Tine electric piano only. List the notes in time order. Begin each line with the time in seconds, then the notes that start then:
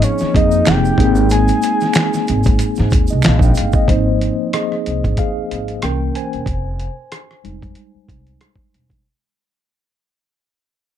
Already playing: F3 A#3 C4 D#4 G#4
0.34 F3 A#3 C4 D#4 G#4
0.98 G#3 A#3 C4 D#4 G#4
3.10 D#5
3.25 F5
3.43 G5
3.58 F5
3.75 D#5
3.89 F3 A#3 C4 D#4 C5
4.54 G#4 D#5
5.19 G#4 F5
5.83 E3 A#3 C#4 A#4 G5
6.16 C5 G#5
7.44 G3 G#3 D#4